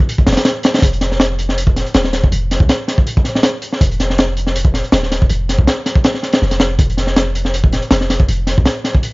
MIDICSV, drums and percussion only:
0, 0, Header, 1, 2, 480
1, 0, Start_track
1, 0, Tempo, 372671
1, 1072, Time_signature, 4, 2, 24, 8
1, 11762, End_track
2, 0, Start_track
2, 0, Title_t, "Drums"
2, 116, Note_on_c, 9, 42, 82
2, 237, Note_on_c, 9, 36, 96
2, 244, Note_off_c, 9, 42, 0
2, 342, Note_on_c, 9, 38, 85
2, 344, Note_on_c, 9, 42, 64
2, 365, Note_off_c, 9, 36, 0
2, 404, Note_off_c, 9, 42, 0
2, 404, Note_on_c, 9, 42, 67
2, 420, Note_off_c, 9, 38, 0
2, 420, Note_on_c, 9, 38, 86
2, 477, Note_off_c, 9, 42, 0
2, 477, Note_on_c, 9, 42, 86
2, 479, Note_off_c, 9, 38, 0
2, 479, Note_on_c, 9, 38, 99
2, 579, Note_off_c, 9, 38, 0
2, 579, Note_on_c, 9, 38, 110
2, 581, Note_off_c, 9, 42, 0
2, 581, Note_on_c, 9, 42, 85
2, 708, Note_off_c, 9, 38, 0
2, 710, Note_off_c, 9, 42, 0
2, 814, Note_on_c, 9, 42, 82
2, 835, Note_on_c, 9, 38, 104
2, 943, Note_off_c, 9, 42, 0
2, 953, Note_on_c, 9, 42, 74
2, 956, Note_off_c, 9, 38, 0
2, 956, Note_on_c, 9, 38, 94
2, 1010, Note_off_c, 9, 42, 0
2, 1010, Note_on_c, 9, 42, 66
2, 1013, Note_off_c, 9, 38, 0
2, 1013, Note_on_c, 9, 38, 86
2, 1061, Note_on_c, 9, 36, 112
2, 1070, Note_off_c, 9, 42, 0
2, 1070, Note_on_c, 9, 42, 91
2, 1142, Note_off_c, 9, 38, 0
2, 1190, Note_off_c, 9, 36, 0
2, 1199, Note_off_c, 9, 42, 0
2, 1200, Note_on_c, 9, 42, 46
2, 1301, Note_on_c, 9, 38, 49
2, 1303, Note_off_c, 9, 42, 0
2, 1303, Note_on_c, 9, 42, 62
2, 1429, Note_off_c, 9, 38, 0
2, 1432, Note_off_c, 9, 42, 0
2, 1437, Note_on_c, 9, 38, 41
2, 1542, Note_off_c, 9, 38, 0
2, 1542, Note_on_c, 9, 38, 116
2, 1556, Note_on_c, 9, 42, 92
2, 1671, Note_off_c, 9, 38, 0
2, 1685, Note_off_c, 9, 42, 0
2, 1786, Note_on_c, 9, 42, 79
2, 1915, Note_off_c, 9, 42, 0
2, 1917, Note_on_c, 9, 38, 45
2, 2033, Note_on_c, 9, 42, 96
2, 2046, Note_off_c, 9, 38, 0
2, 2149, Note_on_c, 9, 36, 89
2, 2162, Note_off_c, 9, 42, 0
2, 2272, Note_on_c, 9, 38, 45
2, 2273, Note_on_c, 9, 42, 63
2, 2278, Note_off_c, 9, 36, 0
2, 2401, Note_off_c, 9, 38, 0
2, 2401, Note_off_c, 9, 42, 0
2, 2401, Note_on_c, 9, 42, 44
2, 2503, Note_off_c, 9, 42, 0
2, 2503, Note_on_c, 9, 42, 88
2, 2507, Note_on_c, 9, 38, 127
2, 2630, Note_off_c, 9, 38, 0
2, 2630, Note_on_c, 9, 38, 60
2, 2632, Note_off_c, 9, 42, 0
2, 2743, Note_off_c, 9, 38, 0
2, 2743, Note_on_c, 9, 38, 58
2, 2745, Note_on_c, 9, 42, 69
2, 2872, Note_off_c, 9, 38, 0
2, 2874, Note_off_c, 9, 42, 0
2, 2880, Note_on_c, 9, 36, 93
2, 2989, Note_on_c, 9, 42, 91
2, 3009, Note_off_c, 9, 36, 0
2, 3117, Note_off_c, 9, 42, 0
2, 3234, Note_on_c, 9, 42, 71
2, 3237, Note_on_c, 9, 38, 38
2, 3351, Note_on_c, 9, 36, 102
2, 3363, Note_off_c, 9, 42, 0
2, 3366, Note_off_c, 9, 38, 0
2, 3465, Note_on_c, 9, 42, 90
2, 3469, Note_on_c, 9, 38, 108
2, 3480, Note_off_c, 9, 36, 0
2, 3594, Note_off_c, 9, 42, 0
2, 3598, Note_off_c, 9, 38, 0
2, 3708, Note_on_c, 9, 38, 50
2, 3715, Note_on_c, 9, 42, 72
2, 3837, Note_off_c, 9, 38, 0
2, 3837, Note_on_c, 9, 36, 102
2, 3844, Note_off_c, 9, 42, 0
2, 3950, Note_on_c, 9, 42, 96
2, 3966, Note_off_c, 9, 36, 0
2, 4079, Note_off_c, 9, 42, 0
2, 4083, Note_on_c, 9, 36, 103
2, 4179, Note_on_c, 9, 38, 38
2, 4186, Note_on_c, 9, 42, 73
2, 4212, Note_off_c, 9, 36, 0
2, 4308, Note_off_c, 9, 38, 0
2, 4315, Note_off_c, 9, 42, 0
2, 4320, Note_on_c, 9, 38, 54
2, 4420, Note_off_c, 9, 38, 0
2, 4420, Note_on_c, 9, 38, 116
2, 4421, Note_on_c, 9, 42, 90
2, 4548, Note_off_c, 9, 38, 0
2, 4550, Note_off_c, 9, 42, 0
2, 4662, Note_on_c, 9, 42, 68
2, 4791, Note_off_c, 9, 42, 0
2, 4798, Note_on_c, 9, 38, 45
2, 4907, Note_on_c, 9, 36, 100
2, 4910, Note_on_c, 9, 42, 92
2, 4927, Note_off_c, 9, 38, 0
2, 5036, Note_off_c, 9, 36, 0
2, 5039, Note_off_c, 9, 42, 0
2, 5043, Note_on_c, 9, 42, 44
2, 5150, Note_off_c, 9, 42, 0
2, 5150, Note_on_c, 9, 42, 65
2, 5151, Note_on_c, 9, 38, 47
2, 5278, Note_off_c, 9, 42, 0
2, 5280, Note_off_c, 9, 38, 0
2, 5281, Note_on_c, 9, 38, 38
2, 5386, Note_on_c, 9, 42, 88
2, 5393, Note_off_c, 9, 38, 0
2, 5393, Note_on_c, 9, 38, 118
2, 5515, Note_off_c, 9, 42, 0
2, 5522, Note_off_c, 9, 38, 0
2, 5625, Note_on_c, 9, 42, 69
2, 5752, Note_on_c, 9, 38, 44
2, 5754, Note_off_c, 9, 42, 0
2, 5869, Note_on_c, 9, 42, 100
2, 5881, Note_off_c, 9, 38, 0
2, 5984, Note_on_c, 9, 36, 96
2, 5997, Note_off_c, 9, 42, 0
2, 6103, Note_on_c, 9, 38, 47
2, 6113, Note_off_c, 9, 36, 0
2, 6114, Note_on_c, 9, 42, 73
2, 6231, Note_off_c, 9, 38, 0
2, 6234, Note_off_c, 9, 42, 0
2, 6234, Note_on_c, 9, 42, 47
2, 6340, Note_on_c, 9, 38, 125
2, 6348, Note_off_c, 9, 42, 0
2, 6348, Note_on_c, 9, 42, 94
2, 6469, Note_off_c, 9, 38, 0
2, 6476, Note_on_c, 9, 38, 51
2, 6477, Note_off_c, 9, 42, 0
2, 6589, Note_off_c, 9, 38, 0
2, 6589, Note_on_c, 9, 38, 54
2, 6590, Note_on_c, 9, 42, 72
2, 6718, Note_off_c, 9, 38, 0
2, 6719, Note_off_c, 9, 42, 0
2, 6722, Note_on_c, 9, 36, 96
2, 6820, Note_on_c, 9, 42, 86
2, 6850, Note_off_c, 9, 36, 0
2, 6949, Note_off_c, 9, 42, 0
2, 7073, Note_on_c, 9, 42, 68
2, 7074, Note_on_c, 9, 38, 37
2, 7194, Note_on_c, 9, 36, 103
2, 7202, Note_off_c, 9, 38, 0
2, 7202, Note_off_c, 9, 42, 0
2, 7308, Note_on_c, 9, 38, 107
2, 7312, Note_on_c, 9, 42, 88
2, 7323, Note_off_c, 9, 36, 0
2, 7437, Note_off_c, 9, 38, 0
2, 7441, Note_off_c, 9, 42, 0
2, 7546, Note_on_c, 9, 38, 51
2, 7547, Note_on_c, 9, 42, 78
2, 7669, Note_on_c, 9, 36, 103
2, 7675, Note_off_c, 9, 38, 0
2, 7676, Note_off_c, 9, 42, 0
2, 7780, Note_on_c, 9, 42, 83
2, 7787, Note_on_c, 9, 38, 114
2, 7798, Note_off_c, 9, 36, 0
2, 7909, Note_off_c, 9, 42, 0
2, 7910, Note_off_c, 9, 38, 0
2, 7910, Note_on_c, 9, 38, 50
2, 8022, Note_off_c, 9, 38, 0
2, 8022, Note_on_c, 9, 38, 48
2, 8031, Note_on_c, 9, 42, 64
2, 8148, Note_off_c, 9, 42, 0
2, 8148, Note_on_c, 9, 42, 80
2, 8151, Note_off_c, 9, 38, 0
2, 8159, Note_on_c, 9, 38, 105
2, 8267, Note_off_c, 9, 38, 0
2, 8267, Note_on_c, 9, 38, 53
2, 8277, Note_off_c, 9, 42, 0
2, 8385, Note_on_c, 9, 42, 64
2, 8389, Note_off_c, 9, 38, 0
2, 8389, Note_on_c, 9, 38, 54
2, 8497, Note_off_c, 9, 38, 0
2, 8497, Note_on_c, 9, 38, 107
2, 8508, Note_off_c, 9, 42, 0
2, 8508, Note_on_c, 9, 42, 82
2, 8626, Note_off_c, 9, 38, 0
2, 8637, Note_off_c, 9, 42, 0
2, 8742, Note_on_c, 9, 36, 105
2, 8742, Note_on_c, 9, 42, 85
2, 8871, Note_off_c, 9, 36, 0
2, 8871, Note_off_c, 9, 42, 0
2, 8883, Note_on_c, 9, 42, 41
2, 8983, Note_on_c, 9, 38, 43
2, 8990, Note_off_c, 9, 42, 0
2, 8990, Note_on_c, 9, 42, 70
2, 9105, Note_off_c, 9, 38, 0
2, 9105, Note_on_c, 9, 38, 39
2, 9119, Note_off_c, 9, 42, 0
2, 9227, Note_on_c, 9, 42, 88
2, 9229, Note_off_c, 9, 38, 0
2, 9229, Note_on_c, 9, 38, 107
2, 9356, Note_off_c, 9, 42, 0
2, 9357, Note_off_c, 9, 38, 0
2, 9469, Note_on_c, 9, 42, 75
2, 9594, Note_on_c, 9, 38, 44
2, 9598, Note_off_c, 9, 42, 0
2, 9710, Note_on_c, 9, 42, 88
2, 9722, Note_off_c, 9, 38, 0
2, 9836, Note_on_c, 9, 36, 99
2, 9839, Note_off_c, 9, 42, 0
2, 9950, Note_on_c, 9, 42, 77
2, 9957, Note_on_c, 9, 38, 46
2, 9965, Note_off_c, 9, 36, 0
2, 10077, Note_off_c, 9, 42, 0
2, 10077, Note_on_c, 9, 42, 41
2, 10086, Note_off_c, 9, 38, 0
2, 10183, Note_on_c, 9, 38, 122
2, 10190, Note_off_c, 9, 42, 0
2, 10190, Note_on_c, 9, 42, 88
2, 10312, Note_off_c, 9, 38, 0
2, 10312, Note_on_c, 9, 38, 56
2, 10319, Note_off_c, 9, 42, 0
2, 10430, Note_off_c, 9, 38, 0
2, 10430, Note_on_c, 9, 38, 62
2, 10432, Note_on_c, 9, 42, 75
2, 10557, Note_on_c, 9, 36, 101
2, 10559, Note_off_c, 9, 38, 0
2, 10561, Note_off_c, 9, 42, 0
2, 10671, Note_on_c, 9, 42, 85
2, 10686, Note_off_c, 9, 36, 0
2, 10799, Note_off_c, 9, 42, 0
2, 10906, Note_on_c, 9, 38, 37
2, 10909, Note_on_c, 9, 42, 75
2, 11035, Note_off_c, 9, 38, 0
2, 11038, Note_off_c, 9, 42, 0
2, 11048, Note_on_c, 9, 36, 90
2, 11148, Note_on_c, 9, 38, 105
2, 11151, Note_on_c, 9, 42, 83
2, 11177, Note_off_c, 9, 36, 0
2, 11276, Note_off_c, 9, 38, 0
2, 11280, Note_off_c, 9, 42, 0
2, 11391, Note_on_c, 9, 38, 51
2, 11396, Note_on_c, 9, 42, 71
2, 11519, Note_off_c, 9, 38, 0
2, 11522, Note_on_c, 9, 36, 100
2, 11525, Note_off_c, 9, 42, 0
2, 11631, Note_on_c, 9, 42, 94
2, 11651, Note_off_c, 9, 36, 0
2, 11760, Note_off_c, 9, 42, 0
2, 11762, End_track
0, 0, End_of_file